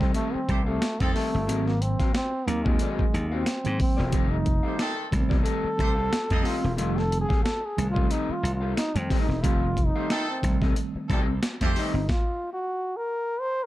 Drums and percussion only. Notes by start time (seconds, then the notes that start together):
0.01 kick, snare
0.14 closed hi-hat
0.49 kick, closed hi-hat
0.82 snare, closed hi-hat
1.00 kick, closed hi-hat
1.16 snare, open hi-hat
1.49 closed hi-hat
1.68 snare
1.82 closed hi-hat
2.00 kick, snare, closed hi-hat
2.15 snare, closed hi-hat
2.48 closed hi-hat
2.66 kick
2.79 closed hi-hat
2.99 kick
3.15 closed hi-hat
3.46 snare, closed hi-hat
3.65 closed hi-hat
3.80 kick, open hi-hat
3.98 snare
4.12 kick, closed hi-hat
4.46 kick, closed hi-hat
4.79 snare, closed hi-hat
5.12 kick, snare, closed hi-hat
5.31 kick, snare
5.46 closed hi-hat
5.79 kick, closed hi-hat
6.13 snare, closed hi-hat
6.30 kick, closed hi-hat
6.45 snare, open hi-hat
6.78 closed hi-hat
6.98 snare
7.12 closed hi-hat
7.30 kick, snare
7.46 snare, closed hi-hat
7.78 closed hi-hat
7.96 kick
8.11 closed hi-hat
8.45 closed hi-hat
8.77 snare, closed hi-hat
8.96 closed hi-hat
9.10 kick, open hi-hat
9.29 snare
9.44 kick, closed hi-hat
9.77 kick, closed hi-hat
10.10 snare, closed hi-hat
10.43 kick, snare, closed hi-hat
10.62 kick, snare
10.76 closed hi-hat
11.10 kick, closed hi-hat
11.43 snare, closed hi-hat
11.61 kick, closed hi-hat
11.76 snare, open hi-hat
12.09 kick, snare